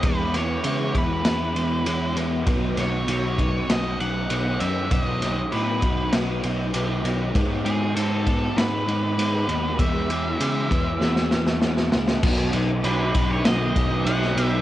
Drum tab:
CC |----------------|----------------|----------------|----------------|
RD |x-x-x-x-x-x-x-x-|x-x-x-x-x-x-x-x-|x-x-x-x-x-x-x-x-|x-x-x-x-x-x-x-x-|
SD |--o-----o-------|--o-----o-------|--o-----o-------|--------o-------|
BD |o-----o---------|o-----o---------|o-----o---------|o-----o---------|

CC |----------------|x---------------|
RD |x-x-x-x---------|--x-x-x-x-x-x-x-|
SD |--------oooooooo|--------o----o--|
BD |o-----o---------|o-----o---o-----|